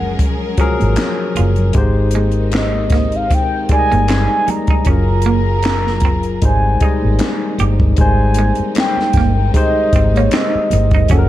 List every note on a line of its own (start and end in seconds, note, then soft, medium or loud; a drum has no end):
0.00 0.15 F#1 medium
0.00 0.59 F3 medium
0.00 0.58 F#3 medium
0.00 1.72 G#3 medium
0.00 1.72 C#4 medium
0.00 0.60 G#4 medium
0.00 1.71 G#4 medium
0.00 0.61 A#4 medium
0.00 1.72 A#4 medium
0.00 0.93 F#5 loud
0.19 kick medium
0.19 closed hi-hat medium
0.19 muted conga soft
0.58 1.57 F3 medium
0.58 1.57 F#3 medium
0.58 0.73 C#4 medium
0.58 1.58 G#4 medium
0.58 1.58 A#4 medium
0.58 muted fingered electric bass stroke soft
0.58 kick medium
0.58 closed hi-hat medium
0.79 0.96 G#1 medium
0.79 closed hi-hat soft
0.79 high conga medium
0.96 snare loud
0.96 clap medium
0.96 closed hi-hat medium
0.96 muted conga soft
0.96 high conga medium
1.35 1.71 F#1 medium
1.35 1.50 F4 medium
1.35 closed hi-hat medium
1.35 high conga medium
1.35 low conga medium
1.56 closed hi-hat soft
1.56 low conga medium
1.73 3.27 G#1 medium
1.73 4.83 D#3 medium
1.73 3.05 G#3 medium
1.73 4.83 C4 medium
1.73 4.83 D#4 medium
1.73 3.05 D#4 medium
1.73 3.06 G4 medium
1.73 kick loud
1.73 closed hi-hat medium
1.73 muted conga soft
1.78 3.06 C5 medium
2.11 closed hi-hat medium
2.11 muted conga soft
2.11 high conga soft
2.15 2.28 G#3 medium
2.32 closed hi-hat soft
2.52 snare loud
2.52 clap medium
2.52 closed hi-hat medium
2.52 muted conga soft
2.52 high conga soft
2.56 3.18 D#5 medium
2.75 high conga medium
2.90 3.06 A#3 medium
2.90 kick medium
2.90 snare soft
2.90 closed hi-hat medium
2.90 muted conga soft
3.12 closed hi-hat soft
3.16 3.32 F5 medium
3.31 3.69 G5 loud
3.31 muted clean electric guitar stroke soft
3.31 kick medium
3.31 closed hi-hat medium
3.31 muted conga soft
3.69 4.69 G3 medium
3.69 4.68 G#3 medium
3.69 3.85 C4 medium
3.69 4.69 D#4 medium
3.69 3.78 D5 medium
3.69 4.51 G#5 medium
3.69 muted fingered electric bass stroke soft
3.69 kick medium
3.69 closed hi-hat medium
3.69 muted conga soft
3.79 4.73 D#5 medium
3.91 4.25 G1 medium
3.91 4.02 A#3 medium
3.91 closed hi-hat soft
3.91 high conga medium
4.08 4.23 C4 medium
4.08 snare loud
4.08 clap medium
4.08 closed hi-hat medium
4.08 high conga medium
4.48 4.88 A#5 loud
4.48 muted clean electric guitar stroke soft
4.48 closed hi-hat medium
4.48 muted conga soft
4.48 high conga medium
4.48 low conga medium
4.67 4.81 D#4 medium
4.67 kick medium
4.67 closed hi-hat soft
4.67 low conga medium
4.85 6.38 F#1 medium
4.85 6.41 F#3 medium
4.85 6.17 F#3 medium
4.85 5.01 C#4 medium
4.85 6.41 F4 medium
4.85 6.17 F4 medium
4.85 6.41 G#4 medium
4.85 6.41 A#4 medium
4.85 kick loud
4.85 closed hi-hat medium
4.85 muted conga soft
4.85 low conga medium
4.89 6.18 G#4 medium
4.89 6.18 A#4 medium
4.89 6.39 A#5 loud
5.22 closed hi-hat medium
5.22 high conga medium
5.26 5.40 A#3 medium
5.62 snare loud
5.62 clap medium
5.62 closed hi-hat medium
5.62 muted conga soft
5.62 high conga soft
5.87 snare soft
5.87 high conga medium
6.00 kick medium
6.00 closed hi-hat medium
6.05 6.18 C4 medium
6.23 closed hi-hat soft
6.42 6.76 G#1 medium
6.42 7.97 D#3 medium
6.42 6.76 G3 medium
6.42 6.75 G#3 medium
6.42 7.97 C4 medium
6.42 6.76 D#4 medium
6.42 7.97 D#4 medium
6.42 6.77 C5 medium
6.42 7.56 G#5 loud
6.42 kick medium
6.42 closed hi-hat medium
6.42 muted conga soft
6.80 7.81 G3 medium
6.80 7.80 G#3 medium
6.80 7.80 D#4 medium
6.80 6.96 D#4 medium
6.80 7.81 D#5 medium
6.80 muted fingered electric bass stroke soft
6.80 kick medium
6.80 closed hi-hat medium
7.02 7.19 G#1 medium
7.02 high conga medium
7.19 snare loud
7.19 clap medium
7.19 closed hi-hat medium
7.19 muted conga soft
7.19 high conga medium
7.58 7.93 G1 medium
7.58 7.73 G4 medium
7.58 closed hi-hat medium
7.58 muted conga soft
7.58 high conga medium
7.58 low conga medium
7.79 kick medium
7.79 low conga medium
7.97 8.50 G#1 medium
7.97 11.07 D#3 medium
7.97 9.29 G3 medium
7.97 9.28 G#3 medium
7.97 11.07 C4 medium
7.97 11.07 D#4 medium
7.97 9.29 D#4 medium
7.97 8.73 G#5 loud
7.97 kick loud
7.97 closed hi-hat medium
7.97 muted conga soft
8.01 9.30 C5 medium
8.34 closed hi-hat medium
8.34 muted conga soft
8.34 high conga medium
8.39 8.52 G#3 medium
8.55 closed hi-hat soft
8.60 muted fingered electric bass stroke soft
8.75 snare loud
8.75 clap medium
8.75 closed hi-hat medium
8.75 muted conga soft
8.75 high conga soft
8.79 9.52 G5 loud
8.97 snare soft
8.97 high conga medium
9.13 9.48 G1 medium
9.13 kick medium
9.13 snare soft
9.13 closed hi-hat medium
9.13 muted conga soft
9.17 9.30 A#3 medium
9.54 10.84 G#3 medium
9.54 10.85 D#4 medium
9.54 10.85 G4 medium
9.54 10.86 C5 medium
9.54 10.18 D#5 loud
9.54 muted clean electric guitar stroke soft
9.54 kick medium
9.54 closed hi-hat medium
9.92 10.27 G#1 medium
9.92 10.09 C4 medium
9.92 kick medium
9.92 closed hi-hat medium
9.92 muted conga soft
10.14 10.28 A#3 medium
10.14 10.33 C#5 medium
10.14 closed hi-hat soft
10.14 high conga medium
10.31 10.47 C4 medium
10.31 11.13 D#5 medium
10.31 snare loud
10.31 clap medium
10.31 closed hi-hat medium
10.31 muted conga soft
10.31 high conga medium
10.55 muted fingered electric bass stroke soft
10.71 11.05 G1 medium
10.71 muted clean electric guitar stroke soft
10.71 closed hi-hat medium
10.71 high conga medium
10.71 low conga medium
10.91 11.05 D#4 medium
10.91 kick medium
10.91 closed hi-hat soft
10.91 low conga medium
11.09 11.29 F#1 loud
11.09 11.29 F3 medium
11.09 11.29 F#3 medium
11.09 11.29 G#3 medium
11.09 11.29 C#4 medium
11.09 11.24 C#4 medium
11.09 11.29 G#4 medium
11.09 11.18 A4 medium
11.09 11.29 A#4 medium
11.09 11.29 F#5 loud
11.09 kick loud
11.09 closed hi-hat medium
11.19 11.29 A#4 medium